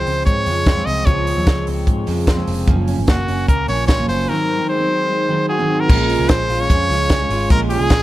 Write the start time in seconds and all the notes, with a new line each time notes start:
Already playing: F3 G#3 C4 F4 C5
0.00 F3
0.06 C#2 C4, open hi-hat
0.26 G#2 G#3 C#5, kick, closed hi-hat
0.45 F2 C#3 F3 G#3, open hi-hat
0.66 F4, kick, snare, closed hi-hat
0.76 C#3 F3 G#3 C4
0.86 C2 C4 D#5, open hi-hat
1.05 C#2 C#3 F3 G#3 C#5, kick, closed hi-hat
1.27 open hi-hat
1.35 D#2 F3 G#3 C4
1.47 C#2 G#3, kick, snare, closed hi-hat
1.55 F3 G#3 C4
1.67 C#2 C4, open hi-hat
1.87 G#2 G#3, kick, closed hi-hat
2.06 F2 C#3 F3 G#3 C4, open hi-hat
2.27 F4, kick, snare, closed hi-hat
2.37 C#3 F3 G#3 C4
2.47 F1 C4, open hi-hat
2.67 F#1 F#2 C#3 F3 A#3 C#4, kick, closed hi-hat
2.88 C#4, open hi-hat
2.97 G#1 F3 A#3 C#4
3.07 F#1 A#3 F#4, kick, snare, closed hi-hat
3.17 A#3 C#4
3.28 F#1 C#4, open hi-hat
3.48 C#2 A#3 A#4, kick, closed hi-hat
3.68 A#1 C#3 F3 A#3 C#4 C#5, open hi-hat
3.88 F4 C#5, kick, snare, closed hi-hat
3.98 F#2 C#3 F3 A#3 C#4
4.08 F#1 C#4 C5, open hi-hat
4.28 G#2 D#3 F#3 C4 D#4 A#4
4.49 C4
4.58 F#3 C4 D#4
4.69 G#3 C5
4.78 F#3 C4 D#4
4.89 C4
5.09 G#3
5.28 D#3 F#3 C4 D#4
5.49 F#4 G#4
5.59 G#2 D#3 F#3 C4 D#4
5.70 C4
5.80 A#4
5.88 A#1 A#2 F3 G#3 C#4 F4, kick, crash
6.09 C#4, open hi-hat
6.19 C2
6.28 A#1 F3 G#3 F4 C5, kick, snare, hi-hat pedal, ride
6.49 A#1 F4, open hi-hat
6.58 G#3 C#4 F4 C#5
6.70 F2 C#4, kick, hi-hat pedal, ride
6.89 C#2 F3 G#3 C#4 F4, open hi-hat
7.09 C#4, kick, snare, hi-hat pedal, ride
7.19 G#3 C#4 F4
7.29 G#1 F4, open hi-hat
7.49 A#1 A#2 F3 G#3 C#4 F4 A#4, kick, hi-hat pedal, ride
7.70 C#4 G#4, open hi-hat
7.80 C2
7.89 A#1 F3 G#3 C#4 F4, kick, snare, hi-hat pedal, ride